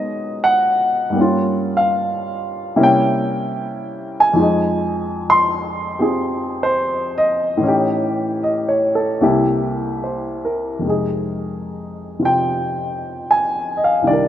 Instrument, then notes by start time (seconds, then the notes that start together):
grand piano
Already playing: B2 F3 F#3 G#3 A#3 B3 C#4 D#4 D#5
0.44 F#5
1.10 G2 G3
1.15 A#3 C#4
1.21 F4
1.77 F5
2.76 C3 G3 A#3 C#4 E4
2.83 G5
4.20 G#5
4.33 F2 F3
4.39 G#3 D#4
5.30 C6
5.99 C4 F4 G4 G#4
6.63 C5
7.18 D#5
7.57 A2 E3
7.63 C#4 D#4
7.68 G4
8.43 D#5
8.69 C#5
8.95 A4
9.21 C2 C3 A#3 E4 G4
10.04 C5
10.45 A#4
10.79 F2 C3
10.85 G#3 D#4
10.90 G#4
12.19 C3 F3 C4 F4
12.25 G5
13.31 G#5
13.77 D#5
13.84 F5
14.02 C2 C3
14.07 D#3 D4 D5
14.13 A#4